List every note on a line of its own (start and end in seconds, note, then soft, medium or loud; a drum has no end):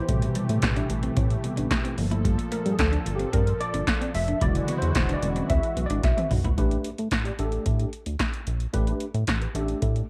0.00 1.94 E3 medium
0.00 1.94 G4 medium
0.00 0.59 C5 medium
0.08 0.29 A1 loud
0.08 1.94 B2 medium
0.08 1.43 C3 medium
0.08 1.43 G3 medium
0.08 1.96 A3 medium
0.08 0.17 A3 medium
0.08 kick loud
0.08 closed hi-hat loud
0.22 muted clean electric guitar stroke soft
0.22 closed hi-hat medium
0.35 0.44 G3 medium
0.35 closed hi-hat medium
0.49 0.59 A2 loud
0.49 closed hi-hat medium
0.62 0.83 A1 loud
0.62 kick loud
0.62 snare loud
0.62 clap medium
0.62 closed hi-hat loud
0.76 0.85 D4 medium
0.76 closed hi-hat medium
0.90 1.10 A1 medium
0.90 muted clean electric guitar stroke soft
0.90 closed hi-hat medium
1.03 1.12 C4 medium
1.03 closed hi-hat soft
1.17 1.37 A2 loud
1.17 1.25 C4 loud
1.17 kick loud
1.17 closed hi-hat medium
1.30 closed hi-hat soft
1.44 1.68 C3 medium
1.44 1.68 G3 soft
1.44 1.69 B3 medium
1.44 muted clean electric guitar stroke soft
1.44 closed hi-hat medium
1.57 1.68 A1 medium
1.57 1.66 D4 medium
1.57 closed hi-hat medium
1.71 kick loud
1.71 snare loud
1.71 clap medium
1.71 closed hi-hat medium
1.85 1.93 C4 medium
1.85 closed hi-hat medium
1.97 2.38 G1 loud
1.97 4.39 A#2 medium
1.97 2.75 F3 medium
1.97 4.38 F3 medium
1.97 2.75 A3 medium
1.97 2.75 A#3 medium
1.97 4.39 A4 medium
1.97 muted clean electric guitar stroke soft
1.97 open hi-hat medium
2.11 2.20 E4 medium
2.11 closed hi-hat soft
2.25 2.33 G3 medium
2.25 kick loud
2.25 closed hi-hat loud
2.38 muted clean electric guitar stroke soft
2.38 closed hi-hat medium
2.52 2.61 A3 medium
2.52 2.71 A#4 medium
2.52 closed hi-hat medium
2.66 2.75 G2 loud
2.66 closed hi-hat medium
2.72 2.79 G#4 medium
2.79 2.99 D2 loud
2.79 3.16 A4 medium
2.79 kick loud
2.79 snare loud
2.79 clap loud
2.79 closed hi-hat loud
2.92 3.01 D4 medium
2.92 closed hi-hat soft
3.06 3.26 G1 loud
3.06 muted clean electric guitar stroke soft
3.06 closed hi-hat medium
3.15 3.28 C4 medium
3.15 3.34 G4 medium
3.19 closed hi-hat soft
3.33 3.53 G2 loud
3.33 3.42 C4 medium
3.33 3.61 A#4 medium
3.33 kick loud
3.33 closed hi-hat medium
3.47 closed hi-hat soft
3.60 4.11 D5 loud
3.60 muted clean electric guitar stroke soft
3.60 closed hi-hat medium
3.74 3.84 G1 medium
3.74 3.83 D4 medium
3.74 closed hi-hat medium
3.87 kick loud
3.87 snare loud
3.87 clap medium
3.87 closed hi-hat medium
4.01 4.10 C4 medium
4.01 closed hi-hat medium
4.14 4.34 F1 loud
4.14 4.42 E5 loud
4.14 muted clean electric guitar stroke soft
4.14 open hi-hat medium
4.28 4.37 D4 medium
4.28 closed hi-hat soft
4.41 4.61 E1 loud
4.41 5.19 C#3 medium
4.41 5.18 D3 medium
4.41 6.55 E3 medium
4.41 5.19 F#3 medium
4.41 6.55 G#3 medium
4.41 5.19 G#3 medium
4.41 6.55 E4 medium
4.41 4.50 E4 medium
4.41 6.55 F#4 medium
4.41 4.75 D5 loud
4.41 kick loud
4.41 closed hi-hat medium
4.55 muted clean electric guitar stroke soft
4.55 closed hi-hat medium
4.68 4.77 B3 medium
4.68 closed hi-hat medium
4.78 5.15 C5 medium
4.78 closed hi-hat medium
4.82 4.92 E2 loud
4.95 5.15 E1 medium
4.95 kick loud
4.95 snare loud
4.95 clap medium
4.95 closed hi-hat loud
5.09 5.18 D4 medium
5.09 closed hi-hat soft
5.14 5.51 D5 loud
5.22 5.42 E1 medium
5.22 5.47 D3 soft
5.22 5.47 F#3 soft
5.22 5.47 G#3 soft
5.22 5.47 C#4 medium
5.22 muted clean electric guitar stroke soft
5.22 closed hi-hat medium
5.36 5.45 C4 medium
5.36 closed hi-hat soft
5.50 5.60 D2 loud
5.50 5.58 C4 medium
5.50 5.87 E5 loud
5.50 kick loud
5.50 closed hi-hat medium
5.63 closed hi-hat soft
5.77 5.86 B1 medium
5.77 muted clean electric guitar stroke soft
5.77 closed hi-hat medium
5.86 6.03 D5 medium
5.86 closed hi-hat medium
5.90 6.00 G#1 medium
5.90 5.99 D4 medium
6.04 6.13 B1 medium
6.04 6.29 E5 medium
6.04 kick loud
6.04 snare medium
6.04 closed hi-hat medium
6.17 6.26 C4 medium
6.17 closed hi-hat medium
6.17 high tom medium
6.31 6.41 B1 loud
6.31 muted clean electric guitar stroke soft
6.31 mid tom medium
6.31 open hi-hat medium
6.44 6.54 A#1 loud
6.44 6.53 E4 medium
6.44 closed hi-hat soft
6.44 floor tom medium
6.58 6.77 A1 loud
6.58 6.88 A3 medium
6.58 6.88 D4 medium
6.58 6.88 G4 medium
6.58 6.89 B4 medium
6.58 kick loud
6.58 closed hi-hat medium
6.71 closed hi-hat medium
6.84 closed hi-hat medium
6.98 7.08 A2 loud
6.98 closed hi-hat medium
7.11 7.31 A1 medium
7.11 kick loud
7.11 snare loud
7.11 clap medium
7.11 closed hi-hat medium
7.25 7.31 G4 medium
7.25 7.31 D5 medium
7.25 closed hi-hat soft
7.39 7.59 A1 medium
7.39 7.88 A3 medium
7.39 7.88 D4 medium
7.39 7.88 G4 medium
7.39 7.88 A4 medium
7.39 closed hi-hat medium
7.52 closed hi-hat soft
7.66 7.86 A2 loud
7.66 kick loud
7.66 closed hi-hat medium
7.79 closed hi-hat soft
7.93 closed hi-hat medium
8.06 8.16 D2 medium
8.06 closed hi-hat medium
8.19 kick loud
8.19 snare loud
8.19 clap medium
8.19 closed hi-hat medium
8.34 closed hi-hat medium
8.47 8.67 A#1 medium
8.47 closed hi-hat medium
8.60 closed hi-hat soft
8.73 8.94 A1 loud
8.73 9.04 A3 medium
8.73 9.04 D4 medium
8.73 9.04 G4 medium
8.73 9.04 B4 medium
8.73 kick medium
8.73 closed hi-hat medium
8.87 closed hi-hat medium
9.00 closed hi-hat medium
9.14 9.24 A2 loud
9.14 closed hi-hat medium
9.27 9.48 A1 medium
9.27 kick loud
9.27 snare loud
9.27 clap medium
9.27 closed hi-hat medium
9.41 9.47 G4 medium
9.41 9.48 B4 medium
9.41 closed hi-hat soft
9.55 9.74 A1 medium
9.55 10.04 A3 medium
9.55 10.04 D4 medium
9.55 10.04 G4 medium
9.55 10.04 A4 medium
9.55 closed hi-hat medium
9.68 closed hi-hat soft
9.82 10.02 A2 loud
9.82 kick loud
9.82 closed hi-hat medium
9.96 closed hi-hat soft